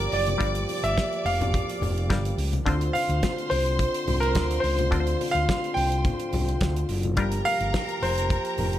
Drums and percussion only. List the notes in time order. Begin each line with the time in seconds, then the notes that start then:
0.12 open hi-hat
0.27 closed hi-hat, high conga
0.41 kick, closed hi-hat, muted conga
0.55 closed hi-hat
0.69 open hi-hat, muted conga
0.84 closed hi-hat
0.97 kick, snare, closed hi-hat, high conga
1.13 closed hi-hat
1.26 open hi-hat, muted conga
1.41 closed hi-hat, low conga
1.54 kick, closed hi-hat, low conga
1.69 closed hi-hat
1.82 open hi-hat, muted conga, low conga
1.98 closed hi-hat
2.10 kick, snare, closed hi-hat, high conga
2.25 closed hi-hat
2.38 open hi-hat
2.53 closed hi-hat, high conga
2.66 kick, closed hi-hat, muted conga
2.81 closed hi-hat
2.95 open hi-hat, muted conga
3.10 closed hi-hat
3.23 kick, snare, closed hi-hat, high conga
3.38 closed hi-hat
3.51 open hi-hat, muted conga
3.66 closed hi-hat
3.79 kick, closed hi-hat
3.94 closed hi-hat
4.08 open hi-hat, muted conga, low conga
4.23 closed hi-hat
4.35 kick, snare, closed hi-hat, high conga
4.51 closed hi-hat
4.64 open hi-hat
4.79 closed hi-hat, high conga
4.92 kick, closed hi-hat, muted conga
5.07 closed hi-hat
5.21 open hi-hat, muted conga
5.35 closed hi-hat
5.49 kick, snare, closed hi-hat, high conga
5.64 closed hi-hat
5.77 open hi-hat, muted conga
5.92 closed hi-hat
6.05 kick, closed hi-hat, low conga
6.20 closed hi-hat
6.33 open hi-hat, muted conga, low conga
6.49 closed hi-hat
6.61 kick, snare, closed hi-hat, high conga
6.76 closed hi-hat
6.89 open hi-hat
7.03 closed hi-hat, high conga
7.17 kick, closed hi-hat, muted conga
7.32 closed hi-hat
7.45 open hi-hat, muted conga
7.61 closed hi-hat
7.74 kick, snare, closed hi-hat, high conga
7.89 closed hi-hat
8.03 open hi-hat
8.18 closed hi-hat
8.30 kick, closed hi-hat
8.45 closed hi-hat
8.58 open hi-hat, muted conga, low conga
8.73 closed hi-hat